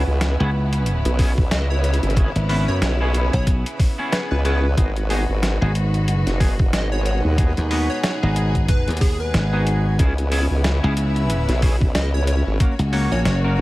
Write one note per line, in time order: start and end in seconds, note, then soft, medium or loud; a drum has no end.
0.00 4.73 C#3 medium
0.00 4.73 B3 medium
0.00 5.94 C#4 medium
0.00 4.73 E4 medium
0.00 9.99 B4 medium
0.00 1.67 F#5 medium
0.00 4.77 G#5 medium
0.07 0.37 C#2 loud
0.21 snare loud
0.21 closed hi-hat medium
0.40 1.02 C#2 loud
0.40 0.49 B3 medium
0.40 0.49 C#4 medium
0.40 0.49 E4 medium
0.40 0.49 G#4 medium
0.73 4.78 E5 medium
0.73 closed hi-hat medium
0.86 closed hi-hat medium
1.05 1.49 B1 loud
1.05 closed hi-hat medium
1.19 1.32 B3 medium
1.19 1.32 C#4 medium
1.19 1.32 E4 medium
1.19 1.32 G#4 medium
1.19 kick loud
1.19 snare soft
1.19 open hi-hat medium
1.38 kick loud
1.51 2.00 C#2 loud
1.51 1.67 D#5 loud
1.51 snare loud
1.51 closed hi-hat medium
1.70 1.79 C#5 medium
1.84 1.96 C#5 medium
1.84 closed hi-hat medium
1.94 closed hi-hat medium
2.03 2.32 G#1 loud
2.03 closed hi-hat soft
2.10 closed hi-hat soft
2.16 2.30 B3 medium
2.16 2.30 C#4 medium
2.16 2.30 E4 medium
2.16 2.30 G#4 medium
2.16 kick loud
2.16 closed hi-hat medium
2.36 2.65 G#1 loud
2.36 closed hi-hat soft
2.49 2.96 B3 medium
2.49 2.96 C#4 medium
2.49 2.96 E4 medium
2.49 2.96 B4 medium
2.49 open hi-hat medium
2.68 2.80 F#2 loud
2.68 2.77 C#5 medium
2.82 3.30 B1 loud
2.82 2.94 C#5 medium
2.82 snare loud
2.82 closed hi-hat medium
3.00 3.95 B3 medium
3.00 3.95 C#4 medium
3.00 3.95 E4 medium
3.00 3.95 G#4 medium
3.14 closed hi-hat medium
3.33 3.63 B1 loud
3.33 3.50 C#5 loud
3.33 kick medium
3.33 closed hi-hat soft
3.47 kick loud
3.47 closed hi-hat medium
3.66 closed hi-hat medium
3.80 kick loud
3.80 snare soft
3.80 open hi-hat medium
3.98 4.42 B3 medium
3.98 4.42 C#4 medium
3.98 4.42 E4 medium
3.98 4.42 G#4 medium
4.12 4.24 B4 medium
4.12 snare loud
4.12 closed hi-hat medium
4.31 4.75 C#2 loud
4.31 4.40 B4 medium
4.45 4.65 B3 medium
4.45 4.65 C#4 medium
4.45 4.65 E4 medium
4.45 4.65 G#4 loud
4.45 4.85 B4 loud
4.45 closed hi-hat medium
4.77 5.26 G#1 loud
4.77 9.95 B2 medium
4.77 9.95 G#3 medium
4.77 4.91 B3 medium
4.77 9.99 D#4 medium
4.77 4.91 D#4 medium
4.77 7.36 F#4 medium
4.77 4.91 F#4 medium
4.77 4.91 G#4 medium
4.77 kick loud
4.77 closed hi-hat medium
4.96 closed hi-hat soft
5.10 5.23 B3 medium
5.10 5.23 D#4 medium
5.10 5.23 F#4 medium
5.10 5.23 G#4 loud
5.10 open hi-hat medium
5.29 5.59 G#1 loud
5.43 snare loud
5.43 closed hi-hat medium
5.61 6.06 G#1 loud
5.61 5.71 B3 medium
5.61 5.71 D#4 medium
5.61 5.71 F#4 medium
5.61 5.71 G#4 medium
5.75 closed hi-hat medium
5.86 11.05 F#5 medium
5.94 closed hi-hat soft
6.06 6.24 G1 loud
6.06 closed hi-hat medium
6.27 6.71 F#1 loud
6.27 snare soft
6.27 closed hi-hat medium
6.36 13.61 G#5 medium
6.40 6.54 B3 medium
6.40 6.54 D#4 medium
6.40 6.54 F#4 medium
6.40 6.54 G#4 loud
6.40 kick loud
6.40 snare soft
6.40 open hi-hat medium
6.59 kick loud
6.73 7.22 G#1 loud
6.73 6.88 D#5 loud
6.73 snare loud
6.73 closed hi-hat medium
6.92 7.01 C#5 medium
7.05 7.18 C#5 medium
7.05 closed hi-hat medium
7.25 7.54 D#2 loud
7.38 7.52 B3 medium
7.38 7.52 D#4 medium
7.38 7.52 F#4 medium
7.38 9.96 G#4 medium
7.38 7.52 G#4 medium
7.38 kick loud
7.38 closed hi-hat medium
7.57 7.87 D#2 loud
7.57 closed hi-hat soft
7.71 8.18 B3 medium
7.71 8.18 D#4 medium
7.71 8.18 F#4 medium
7.71 8.18 B4 medium
7.71 open hi-hat medium
7.90 7.98 C#5 medium
8.03 8.16 C#5 medium
8.03 snare loud
8.03 closed hi-hat medium
8.23 8.85 G#1 loud
8.23 9.49 B3 medium
8.23 9.49 D#4 medium
8.23 9.49 F#4 medium
8.23 9.49 G#4 medium
8.36 closed hi-hat medium
8.55 kick medium
8.55 closed hi-hat soft
8.68 8.90 B4 medium
8.68 kick loud
8.68 closed hi-hat medium
8.88 9.32 D#2 loud
8.88 closed hi-hat soft
8.91 closed hi-hat soft
8.97 closed hi-hat soft
9.01 9.16 G#4 loud
9.01 kick loud
9.01 snare soft
9.01 open hi-hat medium
9.20 9.85 B4 loud
9.34 9.97 G#1 loud
9.34 snare loud
9.34 closed hi-hat medium
9.53 9.96 B3 medium
9.53 9.96 D#4 medium
9.53 9.96 F#4 medium
9.53 9.96 G#4 loud
9.67 closed hi-hat medium
9.99 10.48 C#2 loud
9.99 12.57 C#3 medium
9.99 12.57 B3 medium
9.99 10.12 B3 medium
9.99 10.12 C#4 medium
9.99 13.61 C#4 medium
9.99 12.57 E4 medium
9.99 10.12 E4 medium
9.99 10.12 G#4 medium
9.99 kick loud
9.99 closed hi-hat medium
10.18 closed hi-hat soft
10.31 10.45 B3 medium
10.31 10.45 C#4 medium
10.31 10.45 E4 loud
10.31 10.45 G#4 medium
10.31 open hi-hat medium
10.51 10.80 C#2 loud
10.64 snare loud
10.64 closed hi-hat medium
10.68 12.60 E5 medium
10.82 11.46 C#2 loud
10.82 10.93 B3 medium
10.82 10.93 C#4 medium
10.82 10.93 E4 medium
10.82 10.93 G#4 medium
10.82 12.60 B4 medium
10.97 closed hi-hat medium
11.16 closed hi-hat soft
11.30 closed hi-hat medium
11.49 11.93 B1 loud
11.49 snare soft
11.49 closed hi-hat medium
11.62 11.76 B3 medium
11.62 11.75 C#4 medium
11.62 11.76 E4 medium
11.62 11.76 G#4 medium
11.62 kick loud
11.62 snare soft
11.62 open hi-hat medium
11.81 kick loud
11.95 12.43 C#2 loud
11.95 12.10 D#5 loud
11.95 snare loud
11.95 closed hi-hat medium
12.14 12.23 C#5 medium
12.27 12.40 C#5 medium
12.27 closed hi-hat medium
12.47 12.58 G#1 loud
12.60 13.61 C#3 medium
12.60 13.61 A#3 medium
12.60 12.73 A#3 medium
12.60 12.73 C#4 medium
12.60 13.61 F#4 medium
12.60 12.73 F#4 medium
12.60 12.73 A#4 medium
12.60 kick loud
12.60 closed hi-hat medium
12.79 13.09 C#2 loud
12.79 closed hi-hat soft
12.85 13.61 A#4 medium
12.93 13.40 A#3 medium
12.93 13.40 C#4 medium
12.93 13.40 F#4 medium
12.93 13.40 C#5 medium
12.93 open hi-hat medium
13.11 13.23 A#1 loud
13.11 13.21 C#5 medium
13.23 13.56 F#1 medium
13.23 13.38 C#5 medium
13.23 13.61 F#5 medium
13.23 snare loud
13.23 closed hi-hat medium
13.44 13.61 A#3 medium
13.44 13.61 C#4 medium
13.44 13.61 F#4 medium
13.44 13.61 A#4 medium
13.58 13.61 F#1 loud